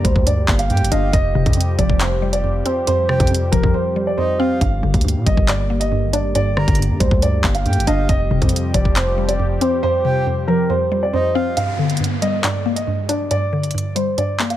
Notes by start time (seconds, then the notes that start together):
Already playing: G2 D3 G3 A#3 D4 G4
0.04 D2 G3 C5, kick, closed hi-hat
0.16 D2, kick
0.26 G2 D5, closed hi-hat
0.48 G1 A#3, kick, clap
0.59 F5, closed hi-hat
0.70 G2 G5, closed hi-hat
0.77 G1, closed hi-hat
0.84 closed hi-hat
0.92 G1 D4 D#5 F5, closed hi-hat
1.13 F1 F2 F3 G3 C4 D#5, kick, closed hi-hat
1.35 F1 C3
1.46 F2, kick, closed hi-hat
1.53 F2, closed hi-hat
1.61 closed hi-hat
1.79 F1 F3 D5, kick, closed hi-hat
1.90 F1, kick
2.00 F2 C5, clap, closed hi-hat
2.22 G3
2.33 D5, closed hi-hat
2.44 F2
2.65 C4 C5, closed hi-hat
2.87 F2 C5, closed hi-hat
3.09 C3 G5, cross-stick
3.20 F2, kick, closed hi-hat
3.27 F2, closed hi-hat
3.34 closed hi-hat
3.52 F1 F3 A#4, kick, closed hi-hat
3.63 F2, kick
3.74 F2 C5
3.96 G3
4.07 D5
4.17 F2 C5 D#5
4.39 C4 F5
4.61 G1 G2 D3 A#3 F5, kick, closed hi-hat
4.83 G1 D3
4.94 D2, kick, closed hi-hat
5.01 G2, closed hi-hat
5.08 closed hi-hat
5.16 A#2
5.26 G1 G3 D#5, kick, closed hi-hat
5.37 G1, kick
5.48 G2 D5, clap, closed hi-hat
5.70 A#3
5.80 D#5, closed hi-hat
5.92 G2
6.03 G#1
6.13 D4 D5, closed hi-hat
6.35 G1 G2 D5, closed hi-hat
6.57 D3 A#5, cross-stick
6.68 G1, kick, closed hi-hat
6.75 G2, closed hi-hat
6.82 closed hi-hat
6.90 G2
7.00 D2 G3 C5, kick, closed hi-hat
7.11 D2, kick
7.22 G2 D5, closed hi-hat
7.44 G1 A#3, kick, clap
7.55 F5, closed hi-hat
7.66 G2 G5, closed hi-hat
7.73 G1, closed hi-hat
7.80 closed hi-hat
7.87 G1 D4 D#5 F5, closed hi-hat
8.09 F1 F2 F3 G3 C4 G4 D#5, kick, closed hi-hat
8.31 F1 C3
8.42 F2, kick, closed hi-hat
8.49 F2, closed hi-hat
8.56 closed hi-hat
8.74 F1 F3 D5, kick, closed hi-hat
8.85 F1, kick
8.96 F2 C5, clap, closed hi-hat
9.18 G3
9.29 D5, closed hi-hat
9.39 F2
9.61 C4 C5, closed hi-hat
9.83 F2 C5
10.05 C3 G5
10.27 F2
10.48 F3 A#4
10.70 F2 C5
10.92 G3
11.03 D5
11.13 F2 C5 D#5
11.35 C4 F5
11.57 G2 F5, closed hi-hat, downlifter
11.79 D3
11.90 closed hi-hat
11.97 G2, closed hi-hat
12.04 closed hi-hat
12.22 G3 D#5, closed hi-hat
12.44 G2 D5, clap, closed hi-hat
12.66 A#3
12.76 D#5, closed hi-hat
12.87 G2
13.09 D4 D5, closed hi-hat
13.31 G2 D5, closed hi-hat
13.53 D3
13.63 closed hi-hat
13.71 G2, closed hi-hat
13.78 closed hi-hat
13.95 G3 C5, closed hi-hat
14.18 G2 D5, closed hi-hat
14.39 A#3, clap
14.50 F5, closed hi-hat